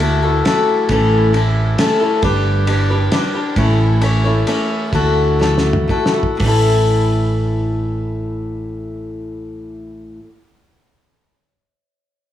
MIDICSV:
0, 0, Header, 1, 4, 480
1, 0, Start_track
1, 0, Tempo, 445104
1, 963, Time_signature, 3, 2, 24, 8
1, 4324, Tempo, 464037
1, 5764, Tempo, 502513
1, 6724, Tempo, 524476
1, 12143, End_track
2, 0, Start_track
2, 0, Title_t, "Steel-string acoustic guitar"
2, 0, Program_c, 0, 25
2, 0, Note_on_c, 0, 57, 50
2, 9, Note_on_c, 0, 64, 66
2, 18, Note_on_c, 0, 66, 60
2, 23, Note_on_c, 0, 69, 68
2, 230, Note_off_c, 0, 69, 0
2, 240, Note_off_c, 0, 57, 0
2, 243, Note_on_c, 0, 69, 55
2, 246, Note_off_c, 0, 64, 0
2, 246, Note_off_c, 0, 66, 0
2, 259, Note_on_c, 0, 66, 43
2, 278, Note_on_c, 0, 64, 40
2, 482, Note_off_c, 0, 64, 0
2, 483, Note_off_c, 0, 69, 0
2, 483, Note_on_c, 0, 57, 62
2, 489, Note_off_c, 0, 66, 0
2, 495, Note_on_c, 0, 64, 70
2, 502, Note_on_c, 0, 66, 64
2, 511, Note_on_c, 0, 69, 73
2, 963, Note_off_c, 0, 57, 0
2, 969, Note_off_c, 0, 64, 0
2, 969, Note_on_c, 0, 45, 71
2, 972, Note_off_c, 0, 66, 0
2, 974, Note_on_c, 0, 52, 75
2, 977, Note_off_c, 0, 69, 0
2, 978, Note_on_c, 0, 57, 75
2, 979, Note_on_c, 0, 61, 79
2, 987, Note_on_c, 0, 64, 79
2, 991, Note_on_c, 0, 69, 88
2, 1421, Note_off_c, 0, 57, 0
2, 1434, Note_on_c, 0, 57, 60
2, 1436, Note_off_c, 0, 61, 0
2, 1444, Note_off_c, 0, 64, 0
2, 1446, Note_off_c, 0, 45, 0
2, 1449, Note_off_c, 0, 52, 0
2, 1449, Note_on_c, 0, 61, 54
2, 1452, Note_off_c, 0, 69, 0
2, 1457, Note_on_c, 0, 64, 63
2, 1465, Note_on_c, 0, 69, 63
2, 1908, Note_off_c, 0, 57, 0
2, 1921, Note_on_c, 0, 57, 62
2, 1926, Note_off_c, 0, 61, 0
2, 1930, Note_off_c, 0, 64, 0
2, 1934, Note_off_c, 0, 69, 0
2, 1937, Note_on_c, 0, 61, 69
2, 1943, Note_on_c, 0, 64, 64
2, 1951, Note_on_c, 0, 69, 70
2, 2142, Note_off_c, 0, 69, 0
2, 2155, Note_off_c, 0, 64, 0
2, 2155, Note_on_c, 0, 69, 44
2, 2162, Note_off_c, 0, 57, 0
2, 2167, Note_off_c, 0, 61, 0
2, 2168, Note_on_c, 0, 64, 45
2, 2180, Note_on_c, 0, 61, 44
2, 2186, Note_on_c, 0, 57, 43
2, 2399, Note_off_c, 0, 69, 0
2, 2400, Note_off_c, 0, 57, 0
2, 2403, Note_off_c, 0, 61, 0
2, 2404, Note_on_c, 0, 55, 68
2, 2405, Note_off_c, 0, 64, 0
2, 2408, Note_on_c, 0, 62, 74
2, 2415, Note_on_c, 0, 67, 78
2, 2420, Note_on_c, 0, 71, 84
2, 2868, Note_off_c, 0, 55, 0
2, 2875, Note_off_c, 0, 62, 0
2, 2881, Note_on_c, 0, 55, 64
2, 2888, Note_on_c, 0, 62, 62
2, 2889, Note_off_c, 0, 67, 0
2, 2892, Note_off_c, 0, 71, 0
2, 2901, Note_on_c, 0, 67, 60
2, 2910, Note_on_c, 0, 71, 63
2, 3114, Note_off_c, 0, 71, 0
2, 3122, Note_off_c, 0, 55, 0
2, 3123, Note_off_c, 0, 67, 0
2, 3126, Note_off_c, 0, 62, 0
2, 3127, Note_on_c, 0, 71, 55
2, 3136, Note_on_c, 0, 67, 45
2, 3154, Note_on_c, 0, 62, 43
2, 3355, Note_off_c, 0, 62, 0
2, 3359, Note_on_c, 0, 55, 65
2, 3365, Note_off_c, 0, 71, 0
2, 3367, Note_off_c, 0, 67, 0
2, 3368, Note_on_c, 0, 62, 65
2, 3380, Note_on_c, 0, 67, 66
2, 3386, Note_on_c, 0, 71, 62
2, 3586, Note_off_c, 0, 71, 0
2, 3599, Note_on_c, 0, 71, 42
2, 3601, Note_off_c, 0, 55, 0
2, 3602, Note_off_c, 0, 67, 0
2, 3605, Note_off_c, 0, 62, 0
2, 3615, Note_on_c, 0, 67, 43
2, 3631, Note_on_c, 0, 62, 42
2, 3840, Note_on_c, 0, 45, 80
2, 3841, Note_off_c, 0, 71, 0
2, 3845, Note_on_c, 0, 57, 78
2, 3846, Note_on_c, 0, 52, 71
2, 3847, Note_off_c, 0, 62, 0
2, 3849, Note_off_c, 0, 67, 0
2, 3851, Note_on_c, 0, 61, 76
2, 3858, Note_on_c, 0, 64, 81
2, 3862, Note_on_c, 0, 73, 84
2, 4322, Note_off_c, 0, 57, 0
2, 4324, Note_off_c, 0, 45, 0
2, 4324, Note_off_c, 0, 61, 0
2, 4326, Note_on_c, 0, 57, 53
2, 4334, Note_off_c, 0, 73, 0
2, 4336, Note_on_c, 0, 61, 62
2, 4343, Note_off_c, 0, 64, 0
2, 4347, Note_on_c, 0, 64, 60
2, 4355, Note_on_c, 0, 73, 70
2, 4552, Note_off_c, 0, 73, 0
2, 4559, Note_off_c, 0, 57, 0
2, 4563, Note_off_c, 0, 64, 0
2, 4564, Note_off_c, 0, 61, 0
2, 4565, Note_on_c, 0, 73, 48
2, 4576, Note_on_c, 0, 64, 51
2, 4585, Note_on_c, 0, 61, 43
2, 4591, Note_on_c, 0, 57, 41
2, 4788, Note_off_c, 0, 57, 0
2, 4797, Note_off_c, 0, 73, 0
2, 4799, Note_off_c, 0, 61, 0
2, 4801, Note_on_c, 0, 57, 60
2, 4802, Note_off_c, 0, 64, 0
2, 4811, Note_on_c, 0, 61, 67
2, 4820, Note_on_c, 0, 64, 69
2, 4824, Note_on_c, 0, 73, 69
2, 5272, Note_off_c, 0, 52, 0
2, 5276, Note_on_c, 0, 50, 71
2, 5278, Note_off_c, 0, 57, 0
2, 5281, Note_off_c, 0, 61, 0
2, 5282, Note_on_c, 0, 57, 72
2, 5287, Note_off_c, 0, 73, 0
2, 5288, Note_off_c, 0, 64, 0
2, 5289, Note_on_c, 0, 64, 71
2, 5292, Note_on_c, 0, 66, 87
2, 5295, Note_on_c, 0, 69, 88
2, 5744, Note_off_c, 0, 57, 0
2, 5754, Note_off_c, 0, 64, 0
2, 5757, Note_on_c, 0, 57, 55
2, 5764, Note_off_c, 0, 66, 0
2, 5766, Note_off_c, 0, 50, 0
2, 5766, Note_on_c, 0, 64, 55
2, 5767, Note_off_c, 0, 69, 0
2, 5776, Note_on_c, 0, 66, 56
2, 5779, Note_on_c, 0, 69, 65
2, 6205, Note_off_c, 0, 57, 0
2, 6217, Note_on_c, 0, 57, 55
2, 6223, Note_off_c, 0, 64, 0
2, 6229, Note_off_c, 0, 66, 0
2, 6234, Note_on_c, 0, 64, 66
2, 6235, Note_off_c, 0, 69, 0
2, 6240, Note_on_c, 0, 66, 64
2, 6246, Note_on_c, 0, 69, 66
2, 6451, Note_off_c, 0, 69, 0
2, 6462, Note_on_c, 0, 69, 44
2, 6467, Note_off_c, 0, 66, 0
2, 6468, Note_off_c, 0, 57, 0
2, 6477, Note_off_c, 0, 64, 0
2, 6479, Note_on_c, 0, 66, 45
2, 6490, Note_on_c, 0, 64, 42
2, 6689, Note_on_c, 0, 45, 71
2, 6715, Note_on_c, 0, 52, 71
2, 6717, Note_off_c, 0, 69, 0
2, 6726, Note_off_c, 0, 66, 0
2, 6731, Note_off_c, 0, 64, 0
2, 6739, Note_on_c, 0, 57, 71
2, 6753, Note_on_c, 0, 61, 73
2, 6770, Note_on_c, 0, 64, 74
2, 6791, Note_on_c, 0, 69, 78
2, 10177, Note_off_c, 0, 45, 0
2, 10201, Note_off_c, 0, 52, 0
2, 10225, Note_off_c, 0, 57, 0
2, 10240, Note_off_c, 0, 61, 0
2, 10256, Note_off_c, 0, 64, 0
2, 10277, Note_off_c, 0, 69, 0
2, 12143, End_track
3, 0, Start_track
3, 0, Title_t, "Fingered electric bass"
3, 0, Program_c, 1, 33
3, 0, Note_on_c, 1, 38, 96
3, 442, Note_off_c, 1, 38, 0
3, 963, Note_on_c, 1, 33, 97
3, 1880, Note_off_c, 1, 33, 0
3, 2406, Note_on_c, 1, 31, 100
3, 3321, Note_off_c, 1, 31, 0
3, 3848, Note_on_c, 1, 33, 101
3, 4755, Note_off_c, 1, 33, 0
3, 5273, Note_on_c, 1, 38, 90
3, 6197, Note_off_c, 1, 38, 0
3, 6724, Note_on_c, 1, 33, 94
3, 10173, Note_off_c, 1, 33, 0
3, 12143, End_track
4, 0, Start_track
4, 0, Title_t, "Drums"
4, 0, Note_on_c, 9, 51, 61
4, 108, Note_off_c, 9, 51, 0
4, 489, Note_on_c, 9, 51, 54
4, 495, Note_on_c, 9, 38, 76
4, 597, Note_off_c, 9, 51, 0
4, 603, Note_off_c, 9, 38, 0
4, 957, Note_on_c, 9, 51, 61
4, 965, Note_on_c, 9, 36, 100
4, 1065, Note_off_c, 9, 51, 0
4, 1073, Note_off_c, 9, 36, 0
4, 1446, Note_on_c, 9, 51, 57
4, 1554, Note_off_c, 9, 51, 0
4, 1925, Note_on_c, 9, 51, 66
4, 1930, Note_on_c, 9, 38, 74
4, 2033, Note_off_c, 9, 51, 0
4, 2038, Note_off_c, 9, 38, 0
4, 2399, Note_on_c, 9, 51, 55
4, 2404, Note_on_c, 9, 36, 108
4, 2507, Note_off_c, 9, 51, 0
4, 2511, Note_off_c, 9, 36, 0
4, 2882, Note_on_c, 9, 51, 58
4, 2990, Note_off_c, 9, 51, 0
4, 3360, Note_on_c, 9, 51, 56
4, 3366, Note_on_c, 9, 38, 79
4, 3468, Note_off_c, 9, 51, 0
4, 3473, Note_off_c, 9, 38, 0
4, 3842, Note_on_c, 9, 51, 58
4, 3843, Note_on_c, 9, 36, 98
4, 3950, Note_off_c, 9, 51, 0
4, 3951, Note_off_c, 9, 36, 0
4, 4329, Note_on_c, 9, 51, 52
4, 4433, Note_off_c, 9, 51, 0
4, 4799, Note_on_c, 9, 51, 52
4, 4902, Note_off_c, 9, 51, 0
4, 5272, Note_on_c, 9, 51, 56
4, 5273, Note_on_c, 9, 36, 92
4, 5376, Note_off_c, 9, 51, 0
4, 5377, Note_off_c, 9, 36, 0
4, 5776, Note_on_c, 9, 38, 50
4, 5872, Note_off_c, 9, 38, 0
4, 5932, Note_on_c, 9, 38, 52
4, 6028, Note_off_c, 9, 38, 0
4, 6080, Note_on_c, 9, 47, 70
4, 6176, Note_off_c, 9, 47, 0
4, 6234, Note_on_c, 9, 36, 64
4, 6329, Note_off_c, 9, 36, 0
4, 6391, Note_on_c, 9, 38, 67
4, 6487, Note_off_c, 9, 38, 0
4, 6556, Note_on_c, 9, 36, 74
4, 6652, Note_off_c, 9, 36, 0
4, 6715, Note_on_c, 9, 46, 80
4, 6720, Note_on_c, 9, 36, 87
4, 6807, Note_off_c, 9, 46, 0
4, 6812, Note_off_c, 9, 36, 0
4, 12143, End_track
0, 0, End_of_file